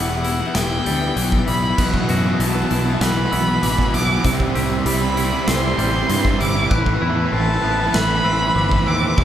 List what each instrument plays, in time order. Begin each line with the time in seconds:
Already playing: fingered electric bass E1, clean electric guitar E2 E3 G3 B3 G4, string section E4 G4 B4, violin F#5, glockenspiel E6
0.01 overdriven electric guitar B3 E4
0.08 overdriven electric guitar B3 E4
0.16 overdriven electric guitar B3 E4
0.23 overdriven electric guitar B3 E4, clean electric guitar E4, glockenspiel E6, closed hi-hat
0.31 overdriven electric guitar B3 E4
0.40 overdriven electric guitar B3 E4
0.47 overdriven electric guitar B3 E4
0.54 fingered electric bass E1, clean electric guitar E3, overdriven electric guitar B3 E4, violin G5, snare, closed hi-hat
0.63 overdriven electric guitar B3 E4
0.69 overdriven electric guitar B3 E4
0.77 overdriven electric guitar B3 E4
0.85 fingered electric bass D2, clean electric guitar G3, overdriven electric guitar B3 E4, glockenspiel G6, closed hi-hat
0.93 overdriven electric guitar B3 E4
1.01 overdriven electric guitar B3 E4
1.09 overdriven electric guitar B3 E4
1.16 fingered electric bass B1, clean electric guitar E3, overdriven electric guitar B3 E4, closed hi-hat
1.23 overdriven electric guitar B3 E4
1.32 overdriven electric guitar B3 E4, kick
1.39 overdriven electric guitar B3 E4
1.46 fingered electric bass B1, clean electric guitar G3, overdriven electric guitar B3 E4, violin B5, glockenspiel E6, closed hi-hat
1.54 overdriven electric guitar B3 E4
1.61 overdriven electric guitar B3 E4
1.68 overdriven electric guitar B3 E4
1.78 fingered electric bass B1, distorted electric guitar B2 E3, clean electric guitar B2, overdriven electric guitar B3 E4, string section E4 F#4, glockenspiel F#6, kick, crash
1.85 distorted electric guitar B2 E3, overdriven electric guitar B3 E4
1.93 distorted electric guitar B2 E3, overdriven electric guitar B3 E4, kick
2.00 distorted electric guitar B2 E3, overdriven electric guitar B3 E4
2.08 fingered electric bass F#2, distorted electric guitar B2 E3, overdriven electric guitar B3 E4, clean electric guitar F#4, glockenspiel E6, closed hi-hat
2.17 distorted electric guitar B2 E3, overdriven electric guitar B3 E4
2.24 distorted electric guitar B2 E3, overdriven electric guitar B3 E4
2.31 distorted electric guitar B2 E3, overdriven electric guitar B3 E4
2.39 fingered electric bass B1, distorted electric guitar B2 E3, overdriven electric guitar B3 E4, clean electric guitar B3, violin A5, closed hi-hat
2.48 distorted electric guitar B2 E3, overdriven electric guitar B3 E4
2.55 distorted electric guitar B2 E3, overdriven electric guitar B3 E4
2.63 distorted electric guitar B2 E3, overdriven electric guitar B3 E4
2.70 fingered electric bass B1, distorted electric guitar B2 E3, overdriven electric guitar B3 E4, clean electric guitar E4, glockenspiel F#6, closed hi-hat
2.77 distorted electric guitar B2 E3, overdriven electric guitar B3 E4
2.86 distorted electric guitar B2 E3, overdriven electric guitar B3 E4
2.94 distorted electric guitar B2 E3, overdriven electric guitar B3 E4
3.01 fingered electric bass B1, distorted electric guitar B2 E3, clean electric guitar E3, overdriven electric guitar B3 E4, violin B5, glockenspiel F#6, snare, closed hi-hat
3.08 distorted electric guitar B2 E3, overdriven electric guitar B3 E4
3.17 distorted electric guitar B2 E3, overdriven electric guitar B3 E4
3.24 distorted electric guitar B2 E3, overdriven electric guitar B3 E4
3.31 fingered electric bass B1, distorted electric guitar B2 E3, clean electric guitar B3, overdriven electric guitar B3 E4, glockenspiel E6, closed hi-hat
3.40 distorted electric guitar B2 E3, overdriven electric guitar B3 E4
3.47 distorted electric guitar B2 E3, overdriven electric guitar B3 E4
3.55 distorted electric guitar B2 E3, overdriven electric guitar B3 E4
3.62 fingered electric bass A1, distorted electric guitar B2 E3, clean electric guitar E3, overdriven electric guitar B3 E4, glockenspiel D6, closed hi-hat
3.70 distorted electric guitar B2 E3, overdriven electric guitar B3 E4
3.78 distorted electric guitar B2 E3, overdriven electric guitar B3 E4, kick, snare
3.86 distorted electric guitar B2 E3, overdriven electric guitar B3 E4
3.94 fingered electric bass B1, distorted electric guitar B2 E3, clean electric guitar B3, overdriven electric guitar B3 E4, violin D6, glockenspiel E6, closed hi-hat
4.01 distorted electric guitar B2 E3, overdriven electric guitar B3 E4
4.09 distorted electric guitar B2 E3, overdriven electric guitar B3 E4
4.17 distorted electric guitar B2 E3, overdriven electric guitar B3 E4
4.24 fingered electric bass C2, distorted electric guitar C3 G3, clean electric guitar C3, overdriven electric guitar C4 E4, string section G4 C5, kick, closed hi-hat
4.31 distorted electric guitar C3 G3, overdriven electric guitar C4 E4
4.40 distorted electric guitar C3 G3, overdriven electric guitar C4 E4, kick
4.48 distorted electric guitar C3 G3, overdriven electric guitar C4 E4
4.55 fingered electric bass C2, distorted electric guitar C3 G3, overdriven electric guitar C4 E4, clean electric guitar G4, glockenspiel E6, closed hi-hat
4.63 distorted electric guitar C3 G3, overdriven electric guitar C4 E4
4.70 distorted electric guitar C3 G3, overdriven electric guitar C4 E4
4.78 distorted electric guitar C3 G3, overdriven electric guitar C4 E4
4.85 fingered electric bass C2, distorted electric guitar C3 G3, clean electric guitar G3, overdriven electric guitar C4 E4, violin B5, closed hi-hat
4.94 distorted electric guitar C3 G3, overdriven electric guitar C4 E4
5.01 distorted electric guitar C3 G3, overdriven electric guitar C4 E4
5.09 distorted electric guitar C3 G3, overdriven electric guitar C4 E4
5.16 distorted electric guitar C3 G3, overdriven electric guitar C4 E4, clean electric guitar E4, glockenspiel E6, closed hi-hat
5.24 distorted electric guitar C3 G3, overdriven electric guitar C4 E4
5.32 distorted electric guitar C3 G3, overdriven electric guitar C4 E4
5.40 distorted electric guitar C3 G3, overdriven electric guitar C4 E4
5.47 fingered electric bass C2, distorted electric guitar C3 G3, clean electric guitar E3, overdriven electric guitar C4 E4, violin C6, snare, closed hi-hat
5.55 distorted electric guitar C3 G3, overdriven electric guitar C4 E4
5.63 distorted electric guitar C3 G3, overdriven electric guitar C4 E4
5.70 distorted electric guitar C3 G3, overdriven electric guitar C4 E4
5.78 fingered electric bass A1, distorted electric guitar C3 G3, clean electric guitar G3, overdriven electric guitar C4 E4, glockenspiel G6, closed hi-hat
5.86 distorted electric guitar C3 G3, overdriven electric guitar C4 E4
5.94 distorted electric guitar C3 G3, overdriven electric guitar C4 E4
6.01 distorted electric guitar C3 G3, overdriven electric guitar C4 E4
6.09 fingered electric bass G2, distorted electric guitar C3 G3, clean electric guitar E3, overdriven electric guitar C4 E4, closed hi-hat
6.17 distorted electric guitar C3 G3, overdriven electric guitar C4 E4
6.24 distorted electric guitar C3 G3, overdriven electric guitar C4 E4, kick, snare
6.32 distorted electric guitar C3 G3, overdriven electric guitar C4 E4
6.39 fingered electric bass G1, distorted electric guitar C3 G3, clean electric guitar G3, overdriven electric guitar C4 E4, violin D6, glockenspiel E6, closed hi-hat
6.47 distorted electric guitar C3 G3, overdriven electric guitar C4 E4
6.55 distorted electric guitar C3 G3, overdriven electric guitar C4 E4
6.62 distorted electric guitar C3 G3, overdriven electric guitar C4 E4
6.70 fingered electric bass A1, clean electric guitar A2, distorted electric guitar A2 E3, overdriven electric guitar E4 B4, string section A4 B4 E5, glockenspiel F#6, kick
6.79 distorted electric guitar A2 E3, overdriven electric guitar E4 B4
6.86 distorted electric guitar A2 E3, overdriven electric guitar E4 B4, kick
6.94 distorted electric guitar A2 E3, overdriven electric guitar E4 B4
7.01 fingered electric bass E2, distorted electric guitar A2 E3, clean electric guitar E4, overdriven electric guitar E4 B4, glockenspiel E6
7.09 distorted electric guitar A2 E3, overdriven electric guitar E4 B4
7.16 distorted electric guitar A2 E3, overdriven electric guitar E4 B4
7.25 distorted electric guitar A2 E3, overdriven electric guitar E4 B4
7.33 fingered electric bass A1, distorted electric guitar A2 E3, clean electric guitar C4, overdriven electric guitar E4 B4, violin A5
7.40 distorted electric guitar A2 E3, overdriven electric guitar E4 B4
7.47 distorted electric guitar A2 E3, overdriven electric guitar E4 B4
7.55 distorted electric guitar A2 E3, overdriven electric guitar E4 B4
7.62 fingered electric bass A1, distorted electric guitar A2 E3, clean electric guitar B3, overdriven electric guitar E4 B4, glockenspiel F#6
7.71 distorted electric guitar A2 E3, overdriven electric guitar E4 B4
7.79 distorted electric guitar A2 E3, overdriven electric guitar E4 B4
7.86 distorted electric guitar A2 E3, overdriven electric guitar E4 B4
7.94 fingered electric bass A1, distorted electric guitar A2 E3, overdriven electric guitar E4 B4, violin B5, glockenspiel F#6, snare
8.01 distorted electric guitar A2 E3, overdriven electric guitar E4 B4
8.08 distorted electric guitar A2 E3, overdriven electric guitar E4 B4
8.16 distorted electric guitar A2 E3, overdriven electric guitar E4 B4
8.24 fingered electric bass A1, distorted electric guitar A2 E3, clean electric guitar C4, overdriven electric guitar E4 B4, glockenspiel E6
8.32 distorted electric guitar A2 E3, overdriven electric guitar E4 B4
8.40 distorted electric guitar A2 E3, overdriven electric guitar E4 B4
8.47 distorted electric guitar A2 E3, overdriven electric guitar E4 B4
8.55 fingered electric bass G1, distorted electric guitar A2 E3, overdriven electric guitar E4 B4, glockenspiel D6
8.62 distorted electric guitar A2 E3, overdriven electric guitar E4 B4
8.70 distorted electric guitar A2 E3, overdriven electric guitar E4 B4, kick
8.78 distorted electric guitar A2 E3, overdriven electric guitar E4 B4
8.84 fingered electric bass D#2, distorted electric guitar A2 E3, clean electric guitar C4, overdriven electric guitar E4 B4, violin D6, glockenspiel E6
8.93 distorted electric guitar A2 E3, overdriven electric guitar E4 B4
9.01 distorted electric guitar A2 E3, overdriven electric guitar E4 B4
9.09 distorted electric guitar A2 E3, overdriven electric guitar E4 B4
9.17 fingered electric bass E1, clean electric guitar E2, distorted electric guitar E3 G3, string section G3 E5, overdriven electric guitar B3 E4, kick